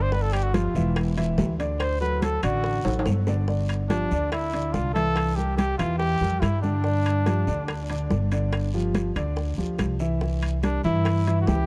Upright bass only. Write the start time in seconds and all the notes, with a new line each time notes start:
Already playing: G1
0.75 E1
1.38 D2
2.43 A1
2.85 A1
3.06 G1
4.11 D2
4.74 C2
5.79 E2
6.21 F2
6.42 G2
7.47 D2
8.11 G1
9.16 D2
9.58 D2
9.79 C2
10.84 G2
11.47 C#2